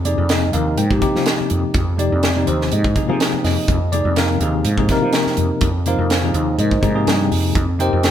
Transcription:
Already playing: fretless electric bass F2
0.04 tine electric piano C3 F3 A#3 D#4 G#4 D5, closed hi-hat
0.18 fretless electric bass F2
0.29 tine electric piano C3 F3 A#3 D#4 G#4 D#5, snare, closed hi-hat
0.52 fretless electric bass D#2, tine electric piano C3 F3 A#3 D#4 A#4 F5, closed hi-hat
0.78 fretless electric bass G#2, tine electric piano G5, closed hi-hat
0.89 tine electric piano C3 F3 A#3 D#4 G4, kick
1.00 tine electric piano C3 F3 A#3 D#4 G4, kick, closed hi-hat
1.16 fretless electric bass F3, snare
1.26 snare, closed hi-hat
1.40 muted fretless electric bass stroke
1.50 fretless electric bass F2, closed hi-hat
1.74 fretless electric bass F2, kick, closed hi-hat
1.97 tine electric piano C3 F3 A#3 D#4 G4 D5, closed hi-hat
2.12 fretless electric bass F2
2.23 snare, closed hi-hat
2.36 tine electric piano C3 F3 A#3 D#4 G4
2.47 fretless electric bass D#2, tine electric piano C5, closed hi-hat
2.61 snare
2.72 fretless electric bass G#2, tine electric piano D#5, closed hi-hat
2.84 kick
2.95 tine electric piano C3 F3 A#3 D#4 G#4, kick, closed hi-hat
3.08 tine electric piano C3 F3 A#3 D#4 G#4, fretless electric bass F3
3.20 snare, closed hi-hat
3.33 muted fretless electric bass stroke
3.44 fretless electric bass F2, tine electric piano D#5, snare, open hi-hat
3.68 fretless electric bass F2, kick, closed hi-hat
3.92 tine electric piano C3 F3 A#3 D#4 G#4 D5, closed hi-hat
4.05 fretless electric bass F2
4.16 tine electric piano C3 F3 A#3 D#4 A#4 F5, snare, closed hi-hat
4.40 fretless electric bass D#2, tine electric piano C3 F3 A#3 D#4 G#4, closed hi-hat
4.65 fretless electric bass G#2, closed hi-hat
4.77 tine electric piano C3 F3 A#3 D#4 G#4, kick
4.89 tine electric piano C3 F3 A#3 D#4 A#4, kick, snare, closed hi-hat
5.02 fretless electric bass F3
5.13 snare, closed hi-hat
5.26 muted fretless electric bass stroke, snare
5.37 fretless electric bass F2, closed hi-hat
5.61 fretless electric bass F2, kick, closed hi-hat
5.86 tine electric piano C3 F3 A#3 D#4 F4 A#4 C5 F5, closed hi-hat
5.99 fretless electric bass F2
6.10 snare, closed hi-hat
6.22 tine electric piano C3 F3 A#3 D#4 G#4
6.34 fretless electric bass D#2, closed hi-hat
6.58 fretless electric bass G#2, tine electric piano D#4 A#4 C5 D#5, closed hi-hat
6.71 kick
6.81 fretless electric bass G#2, tine electric piano C3 F3 A#3 D#4 G#4, kick, closed hi-hat
6.94 tine electric piano C3 F3 A#3 D#4 G#4
7.07 fretless electric bass G2, snare, closed hi-hat
7.31 fretless electric bass F2, open hi-hat
7.55 fretless electric bass F2, kick, closed hi-hat
7.78 tine electric piano C3 F3 A#3 D#4 G4 A#4 C5 D#5 G5, closed hi-hat
7.93 fretless electric bass F2
8.03 tine electric piano C3 F3 A#3 D#4 G#4, snare, closed hi-hat

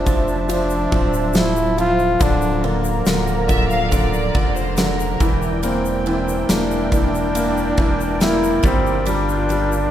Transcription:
Already playing: sub bass F1, grand piano F3, steel-string acoustic guitar F3 E4, analog synth pad F3 C5 E5 A5, flugelhorn D4
0.06 grand piano F3, steel-string acoustic guitar C4, kick, ride, shaker
0.28 shaker
0.49 grand piano F3, flugelhorn D4, ride, shaker
0.70 shaker
0.92 sub bass D1, grand piano F3, steel-string acoustic guitar C4, kick, ride
1.14 shaker
1.34 grand piano F3, flugelhorn E4, steel-string acoustic guitar A4, snare, ride, shaker
1.57 shaker
1.77 grand piano F3, steel-string acoustic guitar C4, flugelhorn F4, ride, shaker
1.99 shaker
2.19 sub bass D1, grand piano D3, steel-string acoustic guitar D4, flugelhorn D4, analog synth pad A#4 D5 A#5, kick, ride, shaker
2.42 shaker
2.62 grand piano D3, flugelhorn A#3, steel-string acoustic guitar F4, ride
2.84 shaker
3.06 sub bass D1, grand piano D3, steel-string acoustic guitar A#4, snare, ride, shaker
3.27 shaker
3.48 grand piano D3, steel-string acoustic guitar F4, violin section E5, kick, ride, shaker
3.69 violin section F5, shaker
3.90 grand piano D3, steel-string acoustic guitar A#4, violin section D5, kick, ride, shaker
4.14 shaker
4.35 sub bass F1, grand piano D3, steel-string acoustic guitar F4, kick, ride
4.55 violin section C5, shaker
4.77 grand piano D3, violin section A#4, steel-string acoustic guitar D5, snare, ride, shaker
5.00 shaker
5.20 sub bass E1, steel-string acoustic guitar E3, grand piano E3, analog synth pad E4 A#4 D5 G5, kick, ride, shaker
5.42 shaker
5.63 steel-string acoustic guitar E3, grand piano A#3, flugelhorn C4, ride, shaker
5.85 shaker
6.06 grand piano E3, flugelhorn C4, steel-string acoustic guitar D4, ride
6.28 shaker
6.49 sub bass E1, grand piano A#3, flugelhorn D4, steel-string acoustic guitar E4, snare, ride, shaker
6.71 shaker
6.92 grand piano E3, steel-string acoustic guitar D4, flugelhorn D4, kick, ride, shaker
7.15 shaker
7.35 grand piano A#3, steel-string acoustic guitar E4, ride, shaker
7.57 shaker
7.77 sub bass E1, grand piano E3, steel-string acoustic guitar D4, kick, ride
8.01 shaker
8.20 grand piano A#3, flugelhorn E4, steel-string acoustic guitar A#4, snare, ride, shaker
8.44 shaker
8.63 sub bass G1, steel-string acoustic guitar G3, grand piano G3, flugelhorn C4, analog synth pad F4, kick, ride, shaker
8.87 shaker
9.06 steel-string acoustic guitar G3, grand piano G3, flugelhorn D4, ride, shaker
9.29 shaker
9.49 grand piano G3, steel-string acoustic guitar D4, ride, shaker
9.72 shaker

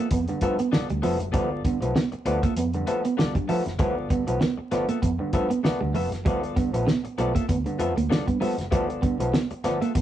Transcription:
0.11 fingered electric bass F2, clav A3 B3, clean electric guitar B3, kick, closed hi-hat
0.28 clav G2 D3, muted clean electric guitar stroke, closed hi-hat
0.41 fingered electric bass G2, clav F3 A3 B3, clean electric guitar B3 F4 A4 E5, kick, closed hi-hat
0.59 clean electric guitar B3, muted clean electric guitar stroke, closed hi-hat
0.72 clav G2 D3, clean electric guitar B3 F4 A4 D5, muted clean electric guitar stroke, snare
0.89 fingered electric bass D2, clean electric guitar G3, muted clean electric guitar stroke, closed hi-hat
1.02 fingered electric bass F1, clav F3 A3 B3, clean electric guitar F3 B3 F4 A4 E5, open hi-hat
1.20 fingered electric bass F#1, clav A3 B3, muted clean electric guitar stroke, closed hi-hat
1.32 fingered electric bass G1, clav F3 A3 B3, clean electric guitar G3 B3 F4 A4 D5, kick, closed hi-hat
1.65 clav G2 D3, clean electric guitar B3, kick, closed hi-hat
1.81 fingered electric bass B1, clav F3 A3 B3, muted clean electric guitar stroke, closed hi-hat
1.95 clean electric guitar B3, muted clean electric guitar stroke, snare
2.12 muted clean electric guitar stroke, muted fingered electric bass stroke, closed hi-hat
2.25 fingered electric bass D2, clav F3 A3 B3, clean electric guitar B3 F4 A4 D5, closed hi-hat
2.42 clean electric guitar A#3 B3 F4 A4 E5, kick, closed hi-hat
2.56 fingered electric bass F2, clav A3 B3, clean electric guitar B3, muted clean electric guitar stroke, closed hi-hat
2.73 clav G2 D3, muted clean electric guitar stroke, closed hi-hat
2.87 clav F3 A3 B3, clean electric guitar B3 F4 A4 E5, closed hi-hat
3.04 clean electric guitar B3, muted clean electric guitar stroke, closed hi-hat
3.17 clav G2 D3, clean electric guitar B3 F4 A4 D5, muted clean electric guitar stroke, snare
3.35 fingered electric bass G2, clean electric guitar G3, muted clean electric guitar stroke, kick, closed hi-hat
3.48 clav F3 A3 B3, clean electric guitar F3 B3 F4 A4 E5, open hi-hat
3.65 fingered electric bass F#1, clav A3 B3, muted clean electric guitar stroke, snare, closed hi-hat
3.79 fingered electric bass G1, clav F3 A3 B3, clean electric guitar G3 A#3 E4 G#4 C#5, kick, closed hi-hat
3.91 clean electric guitar B3 F4 A4 D5
4.10 clav G2 D3, clean electric guitar B3, kick, closed hi-hat
4.27 fingered electric bass B1, clav F3 A3 B3, muted clean electric guitar stroke, closed hi-hat
4.41 clean electric guitar B3, muted clean electric guitar stroke, snare
4.57 muted clean electric guitar stroke, muted fingered electric bass stroke
4.71 fingered electric bass G1, clav F3 A3 B3, clean electric guitar B3 F4 A4 D5, snare, closed hi-hat
4.89 clean electric guitar A#3 B3 F4 A4 E5, closed hi-hat
5.02 fingered electric bass F2, clav A3 B3, clean electric guitar B3, muted clean electric guitar stroke, kick, closed hi-hat
5.19 clav G2 D3, muted clean electric guitar stroke
5.33 fingered electric bass G2, clav F3 A3 B3, clean electric guitar B3 F4 A4 E5, kick, closed hi-hat
5.50 clean electric guitar B3, muted clean electric guitar stroke, closed hi-hat
5.63 clav A3 B3, clean electric guitar B3 F4 A4 D5, muted clean electric guitar stroke, snare
5.81 fingered electric bass D2, clav G2 D3, clean electric guitar G3, muted clean electric guitar stroke
5.94 fingered electric bass F1, clean electric guitar F3 B3 F4 A4 E5, clav A3 B3, open hi-hat
6.12 fingered electric bass F#1, muted clean electric guitar stroke, snare, closed hi-hat
6.25 fingered electric bass G1, clav F3 A3 B3, clean electric guitar G3 B3 F4 A4 D5, kick, closed hi-hat
6.43 closed hi-hat
6.56 clav G2 D3, clean electric guitar B3, kick, closed hi-hat
6.73 fingered electric bass A#1, clav F3 A3 B3, muted clean electric guitar stroke, closed hi-hat
6.87 clean electric guitar B3, muted clean electric guitar stroke, snare
7.04 muted fingered electric bass stroke, muted clean electric guitar stroke, closed hi-hat
7.18 fingered electric bass B1, clav F3 A3 B3, clean electric guitar B3 F4 A4 D5, closed hi-hat
7.35 clean electric guitar A#3 B3 F4 A4 E5, kick, closed hi-hat
7.48 fingered electric bass D2, clav A3 B3, clean electric guitar B3, muted clean electric guitar stroke, kick, closed hi-hat
7.66 clav G2 D3, muted clean electric guitar stroke, closed hi-hat
7.79 fingered electric bass F2, clav F3 A3 B3, clean electric guitar B3 F4 A4 E5, closed hi-hat
7.96 fingered electric bass D2, clean electric guitar A#3, muted clean electric guitar stroke, closed hi-hat
8.09 clav G2 D3, clean electric guitar B3 F4 A4 D5, muted clean electric guitar stroke, snare
8.27 fingered electric bass G2, clean electric guitar B3, muted clean electric guitar stroke, kick, closed hi-hat
8.40 clav F3 A3 B3, clean electric guitar G3 B3 F4 A4 E5, open hi-hat
8.58 fingered electric bass F#1, clav A3 B3, muted clean electric guitar stroke, snare, closed hi-hat
8.71 fingered electric bass G1, clav F3 A3 B3, clean electric guitar G3 B3 F4 A4 D5, kick, closed hi-hat
8.90 closed hi-hat
9.02 clav G2 D3, clean electric guitar B3, kick, closed hi-hat
9.19 fingered electric bass B1, clav F3 A3 B3, muted clean electric guitar stroke, closed hi-hat
9.33 clean electric guitar B3, muted clean electric guitar stroke, snare
9.51 muted fingered electric bass stroke, muted clean electric guitar stroke, closed hi-hat
9.64 fingered electric bass G1, clav F3 A3 B3, clean electric guitar B3 F4 A4 D5, snare, closed hi-hat
9.81 clean electric guitar A#3 B3 F4 A4 E5, closed hi-hat
9.94 fingered electric bass F2, clav A3 B3, clean electric guitar B3, muted clean electric guitar stroke, kick, closed hi-hat

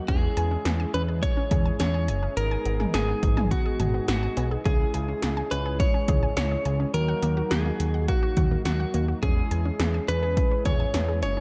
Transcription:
0.08 analog synth bass E2, analog polysynth G#3 C#4 E4 G#4, synth arpeggio sound C#4, clean electric guitar G#4, kick, closed hi-hat
0.37 analog synth bass E2, synth arpeggio sound G#5, closed hi-hat
0.51 synth arpeggio sound C#4
0.65 analog synth bass E2, snare, closed hi-hat
0.80 synth arpeggio sound G#5
0.94 analog synth bass E2, synth arpeggio sound C#4, clean electric guitar B4, closed hi-hat
1.08 synth arpeggio sound G#4
1.23 clean electric guitar C#5, kick, closed hi-hat
1.37 synth arpeggio sound C#4
1.51 analog synth bass E2, synth arpeggio sound G#4, kick, closed hi-hat, mid tom
1.66 synth arpeggio sound G#5
1.80 analog synth bass E2, synth arpeggio sound C#4, clean electric guitar C#5, snare, closed hi-hat
1.94 synth arpeggio sound G#4
2.08 analog synth bass F#1, synth arpeggio sound G#5, closed hi-hat
2.23 synth arpeggio sound C#4
2.37 analog synth bass G#1, analog polysynth G#3 B3 D#4 G#4, clean electric guitar A#4, closed hi-hat
2.51 synth arpeggio sound G#5
2.65 analog synth bass G#1, synth arpeggio sound B3, closed hi-hat
2.80 synth arpeggio sound G#4, mid tom
2.94 analog synth bass G#1, clean electric guitar G#4, synth arpeggio sound G#5, snare, closed hi-hat
3.08 synth arpeggio sound B3
3.23 analog synth bass G#1, kick, closed hi-hat
3.37 synth arpeggio sound G#5, mid tom
3.51 synth arpeggio sound B3, clean electric guitar F#4, kick, closed hi-hat
3.66 synth arpeggio sound G#4
3.80 analog synth bass G#1, synth arpeggio sound G#5, closed hi-hat, mid tom
3.94 synth arpeggio sound B3
4.08 analog synth bass G#1, clean electric guitar F#4, snare, closed hi-hat
4.23 synth arpeggio sound G#5
4.37 analog synth bass B1, synth arpeggio sound B3, closed hi-hat, cowbell
4.51 synth arpeggio sound G#4
4.65 analog synth bass C#2, analog polysynth G#3 C#4 E4 G#4, synth arpeggio sound C#4, clean electric guitar G#4, kick, closed hi-hat
4.94 analog synth bass C#2, synth arpeggio sound G#5, closed hi-hat
5.08 synth arpeggio sound C#4
5.22 analog synth bass C#2, snare, closed hi-hat
5.37 synth arpeggio sound G#5
5.51 analog synth bass C#2, synth arpeggio sound C#4, clean electric guitar B4, closed hi-hat
5.66 synth arpeggio sound G#4
5.80 clean electric guitar C#5, kick, closed hi-hat
5.94 synth arpeggio sound C#4
6.08 analog synth bass C#2, synth arpeggio sound G#4, kick, closed hi-hat, mid tom
6.23 synth arpeggio sound G#5
6.37 analog synth bass C#2, synth arpeggio sound C#4, clean electric guitar C#5, snare, closed hi-hat
6.51 synth arpeggio sound G#4
6.65 analog synth bass C#2, synth arpeggio sound G#5, closed hi-hat
6.80 synth arpeggio sound C#4
6.94 analog synth bass D#2, analog polysynth F#3 A#3 D#4 F#4, clean electric guitar A#4, closed hi-hat
7.08 synth arpeggio sound F#5
7.23 analog synth bass D#2, synth arpeggio sound A#3, closed hi-hat
7.37 synth arpeggio sound F#4
7.51 analog synth bass D#2, clean electric guitar G#4, synth arpeggio sound F#5, snare, closed hi-hat
7.66 synth arpeggio sound A#3
7.80 analog synth bass D#2, closed hi-hat
7.94 synth arpeggio sound F#5
8.08 synth arpeggio sound A#3, clean electric guitar F#4, kick, closed hi-hat
8.23 synth arpeggio sound F#4
8.37 analog synth bass D#2, synth arpeggio sound F#5, kick, closed hi-hat, mid tom
8.51 synth arpeggio sound A#3
8.65 analog synth bass D#2, clean electric guitar F#4, snare, closed hi-hat
8.80 synth arpeggio sound F#5
8.94 analog synth bass D#2, synth arpeggio sound A#3, closed hi-hat
9.08 synth arpeggio sound F#4
9.23 analog synth bass E2, analog polysynth G#3 C#4 E4 G#4, synth arpeggio sound C#4, clean electric guitar G#4, kick, closed hi-hat
9.51 analog synth bass E2, synth arpeggio sound G#5, closed hi-hat
9.65 synth arpeggio sound C#4
9.80 analog synth bass E2, snare, closed hi-hat
9.94 synth arpeggio sound G#5
10.08 analog synth bass E2, synth arpeggio sound C#4, clean electric guitar B4, closed hi-hat
10.23 synth arpeggio sound G#4
10.37 kick, closed hi-hat
10.51 synth arpeggio sound C#4
10.65 analog synth bass E2, synth arpeggio sound G#4, clean electric guitar C#5, kick, closed hi-hat, mid tom
10.80 synth arpeggio sound G#5
10.94 analog synth bass E2, synth arpeggio sound C#4, snare, closed hi-hat
11.08 synth arpeggio sound G#4
11.23 analog synth bass F#1, clean electric guitar C#5, synth arpeggio sound G#5, closed hi-hat
11.37 synth arpeggio sound C#4

